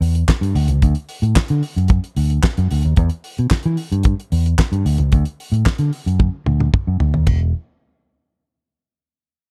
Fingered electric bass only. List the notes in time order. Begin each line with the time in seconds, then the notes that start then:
0.01 E2
0.41 G2
0.55 D2
0.69 C#2
0.82 D2
1.22 A2
1.50 D3
1.76 F#2
2.17 D2
2.58 F#2
2.71 D2
2.85 D#2
2.98 E2
3.39 B2
3.66 E3
3.92 G2
4.32 E2
4.72 G2
4.85 D2
4.98 C#2
5.12 D2
5.52 A2
5.79 D3
6.06 F#2
6.46 D2
6.87 F#2
7.01 D2
7.14 D#2
7.27 E1